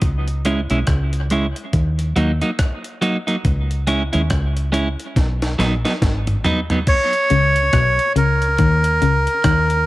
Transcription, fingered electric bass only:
0.02 C#2
0.71 B1
0.88 C#2
1.74 D#2
2.17 D#2
3.45 C#2
4.15 D#2
4.31 C#2
5.17 B1
5.59 A#1
6.02 G#1
7.31 C#2
7.74 B1
8.16 C#2
8.59 D#2
9.03 C#2
9.45 D#2

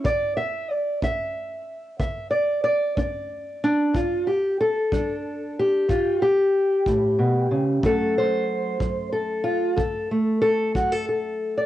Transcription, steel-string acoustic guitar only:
0.04 D3 D5
0.37 E5
0.71 D5
1.02 D4 E5
2.00 D3 E5
2.31 D5
2.64 D5
2.98 D4 D5
3.64 D4
3.94 G2 F4
4.27 G4
4.61 A4
4.92 G3 D4
5.59 G4
5.89 G2 F4
6.22 G4
6.87 A2
7.19 B2
7.51 C#3
7.83 D3 F#3 A3 A4
8.18 C5
8.81 F#3
9.12 A4
9.44 F4
9.76 D3 A4
10.11 A3
10.42 A4
10.75 F#3 F#4
10.92 A4
11.09 A4
11.57 D5

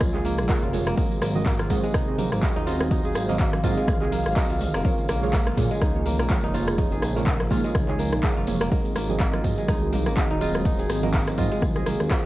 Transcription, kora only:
Already playing: G#3 A#3 D#4 F4 G#4
0.14 G#4
0.25 A#3
0.49 A#3
0.62 F4
0.87 A#3
0.97 A#3
1.21 A#3
1.46 A#3
1.59 F4
1.83 G#3
1.94 D#4
2.18 A#3
2.32 A#3
2.56 D#4
2.67 F4
2.91 D#4
3.05 G#4
3.29 A#3
3.40 A#3
3.64 F4
3.77 G#3
4.02 G#4
4.12 A#3
4.36 A#3
4.50 F4
4.74 A#3
4.85 A#3
5.09 A#3
5.33 A#3
5.47 F4
5.71 G#3
5.82 D#4
6.06 A#3
6.20 A#3
6.44 D#4
6.54 F4
6.78 D#4
6.92 G#4
7.16 A#3
7.27 A#3
7.51 F4
7.64 G#3
7.89 G#4
7.99 A#3
8.23 A#3
8.37 F4
8.61 A#3
8.72 A#3
8.96 A#3
9.20 A#3
9.34 F4
9.58 G#3
9.69 D#4
9.93 A#3
10.06 A#3
10.30 D#4
10.41 F4
10.65 D#4
10.79 G#4
11.03 A#3
11.14 A#3
11.38 F4
11.51 G#3
11.76 G#4
11.86 A#3
12.11 F3

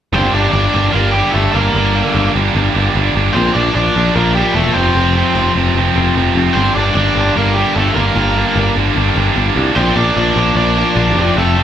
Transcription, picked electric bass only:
0.13 G1
0.33 G1
0.53 G1
0.75 G1
0.94 G1
1.34 G1
1.55 G1
1.75 G1
2.15 G1
2.36 G1
2.55 G1
2.75 G1
2.95 G1
3.15 G1
3.35 A#1
3.55 A#1
3.75 A#1
3.96 A#1
4.16 A#1
4.55 E1
4.76 F1
4.95 F1
5.35 F1
5.55 F1
5.75 F1
5.96 F1
6.15 F1
6.35 F1
6.55 G1
6.76 G1
6.95 G1
7.16 G1
7.37 G1
7.76 G1
7.96 G1
8.16 G1
8.56 G1
8.76 G1
8.96 G1
9.16 G1
9.36 G1
9.56 C2
9.76 A#1
9.96 A#1
10.17 A#1
10.36 A#1
10.55 A#1
10.96 A#1
11.15 F1
11.36 F1

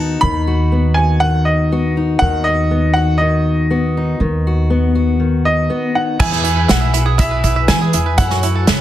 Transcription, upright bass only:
Already playing: D#2
0.22 D#2
2.21 D#2
4.20 D#2
6.20 E2
6.70 B1
7.69 E3
7.94 E2
8.18 F#2
8.68 C#2

